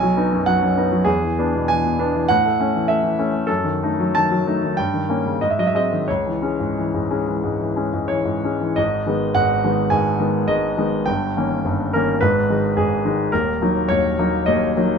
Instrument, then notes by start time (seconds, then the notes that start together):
grand piano
Already playing: B1 G#5
0.03 F#3
0.17 B3 D#4
0.32 F#2
0.46 F#3 F#5
0.62 F#2
0.77 B3 D#4
0.92 F#3
1.05 E2 G#4
1.22 E3
1.39 B3 D4
1.55 B2
1.68 E3 G#5
1.85 B2
1.99 B3 D4
2.14 E3
2.28 A2 F#5
2.45 A3
2.59 A3 C#4
2.75 E3
2.88 A3 E5
3.03 E3
3.19 A3 C#4
3.32 A3
3.47 F#2 A4
3.64 D#3
3.83 A3 D#4
4.00 F#3
4.15 D#3 A5
4.31 F#3
4.47 A3 D#4
4.64 D#3
4.77 G2 G5
4.94 D#3
5.09 A#3 C#4
5.26 C#3
5.41 G#2 D#5
5.50 E5
5.59 F#3 D#5
5.67 E5
5.75 G#3 C4 D#5
5.92 D#3
6.08 C#2 C#5
6.27 E3
6.42 G#3 C#4
6.60 G#2
6.78 E3
6.94 G#2
7.11 G#3 C#4
7.27 E3
7.44 G#2
7.61 E3
7.76 G#3 C#4
7.94 G#2
8.08 E3 C#5
8.25 G#2
8.44 G#3 C#4
8.61 E3
8.76 G#1 G#2 D#5
9.06 D#3 G#3 B3
9.35 G#1 G#2 F#5
9.64 D#3 G#3 B3
9.90 G#1 G#2 G#5
10.19 D#3 G#3 B3
10.48 G#1 G#2 D#5
10.77 D#3 G#3 B3
11.06 G1 G2 G5
11.37 D#3 A#3 C#4
11.65 G1 G2
11.93 D#3 A#3 C#4 A#4
12.21 G#1 G#2 B4
12.50 D#3 G#3 D#4
12.77 G#1 G#2 G#4
13.05 D#3 G#3 D#4
13.32 D#1 D#2 A#4
13.62 F#3 A#3 D#4
13.88 D#1 D#2 C#5
14.19 F#3 A#3 D#4
14.46 D#1 D#2 D#5
14.77 F#3 A#3 D#4